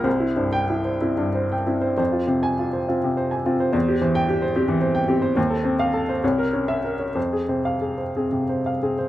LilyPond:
<<
  \new Staff \with { instrumentName = "Upright piano" } { \time 6/8 \key f \minor \tempo 4. = 66 << { r8. g''8 r4. r16 | r8. aes''8 r4. r16 | r8. g''8 r4. r16 | r8. f''8 r4 e''8 r16 |
r8. f''8 r4. r16 | } \\ { c''16 e'16 c''8 e'16 c''16 e'16 g,16 c''16 g''16 e'16 c''16 | c''16 f'16 c''8 f'16 c''16 f'16 c16 c''16 aes''16 f'16 c''16 | c''16 g'16 c''8 g'16 c''16 g'16 e16 c''16 g''16 g'16 c''16 | c''16 a'16 c''8 a'16 c''16 des''16 bes'16 des''8 bes'16 des''16 |
c''16 aes'16 c''8 aes'16 c''16 aes'16 c16 c''16 f''16 aes'16 c''16 | } >> }
  \new Staff \with { instrumentName = "Upright piano" } { \clef bass \time 6/8 \key f \minor c,8 g,4 c'4 c'8 | f,8 c4 c'4 c'8 | e,8 e4 c'4 c'8 | ees,8 c'4 c,8 des'4 |
f,8 c4 c'4 c'8 | }
>>